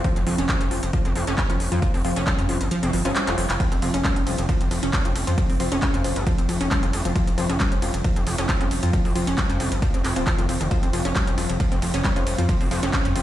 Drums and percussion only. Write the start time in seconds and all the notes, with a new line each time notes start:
0.04 kick, closed hi-hat
0.16 closed hi-hat
0.27 open hi-hat
0.38 closed hi-hat
0.49 kick, clap, closed hi-hat
0.61 closed hi-hat
0.71 open hi-hat
0.83 closed hi-hat
0.93 kick, closed hi-hat
1.05 closed hi-hat
1.16 open hi-hat
1.27 closed hi-hat
1.38 kick, clap, closed hi-hat
1.50 closed hi-hat
1.60 open hi-hat
1.72 closed hi-hat
1.82 kick, closed hi-hat
1.94 open hi-hat
2.05 open hi-hat
2.16 closed hi-hat
2.27 kick, clap, closed hi-hat
2.39 closed hi-hat
2.49 open hi-hat
2.61 closed hi-hat
2.71 closed hi-hat
2.83 closed hi-hat
2.93 open hi-hat
3.05 closed hi-hat
3.16 clap, closed hi-hat
3.27 clap, closed hi-hat
3.38 open hi-hat
3.50 clap, closed hi-hat
3.60 kick, closed hi-hat, ride
3.72 closed hi-hat, ride
3.82 open hi-hat, ride
3.94 closed hi-hat, ride
4.04 kick, clap, closed hi-hat, ride
4.16 closed hi-hat, ride
4.27 open hi-hat, ride
4.38 closed hi-hat, ride
4.49 kick, closed hi-hat, ride
4.61 closed hi-hat, ride
4.71 open hi-hat, ride
4.83 closed hi-hat, ride
4.93 kick, clap, closed hi-hat, ride
5.05 closed hi-hat, ride
5.16 open hi-hat, ride
5.27 closed hi-hat, ride
5.38 kick, closed hi-hat, ride
5.50 open hi-hat, ride
5.60 open hi-hat, ride
5.72 closed hi-hat, ride
5.82 kick, clap, closed hi-hat, ride
5.94 closed hi-hat, ride
6.04 open hi-hat, ride
6.16 closed hi-hat, ride
6.27 kick, closed hi-hat, ride
6.38 closed hi-hat, ride
6.49 open hi-hat, ride
6.61 closed hi-hat, ride
6.71 kick, clap, closed hi-hat, ride
6.83 closed hi-hat, ride
6.93 open hi-hat, ride
7.05 closed hi-hat, ride
7.16 kick, closed hi-hat, ride
7.27 closed hi-hat, ride
7.38 open hi-hat, ride
7.50 closed hi-hat, ride
7.60 kick, clap, closed hi-hat, ride
7.72 closed hi-hat, ride
7.82 open hi-hat, ride
7.94 closed hi-hat, ride
8.04 kick, closed hi-hat, ride
8.16 closed hi-hat, ride
8.27 open hi-hat, ride
8.38 closed hi-hat, ride
8.49 kick, clap, closed hi-hat, ride
8.61 closed hi-hat, ride
8.71 open hi-hat, ride
8.83 closed hi-hat, ride
8.93 kick, closed hi-hat, ride
9.05 open hi-hat, ride
9.16 open hi-hat, ride
9.27 closed hi-hat, ride
9.38 kick, clap, closed hi-hat, ride
9.50 closed hi-hat, ride
9.60 open hi-hat, ride
9.72 closed hi-hat, ride
9.82 kick, closed hi-hat, ride
9.94 closed hi-hat, ride
10.05 clap, open hi-hat, ride
10.16 closed hi-hat, ride
10.27 kick, clap, closed hi-hat, ride
10.39 closed hi-hat, ride
10.49 open hi-hat, ride
10.61 closed hi-hat, ride
10.71 kick, closed hi-hat, ride
10.83 closed hi-hat, ride
10.93 open hi-hat, ride
11.05 closed hi-hat, ride
11.16 kick, clap, closed hi-hat, ride
11.27 closed hi-hat, ride
11.38 open hi-hat, ride
11.50 closed hi-hat, ride
11.60 kick, closed hi-hat, ride
11.72 closed hi-hat, ride
11.82 open hi-hat, ride
11.94 closed hi-hat, ride
12.04 kick, clap, closed hi-hat, ride
12.16 closed hi-hat, ride
12.27 open hi-hat, ride
12.38 closed hi-hat, ride
12.49 kick, closed hi-hat, ride
12.61 open hi-hat, ride
12.71 open hi-hat, ride
12.83 closed hi-hat, ride
12.93 kick, clap, closed hi-hat, ride
13.05 closed hi-hat, ride
13.16 open hi-hat, ride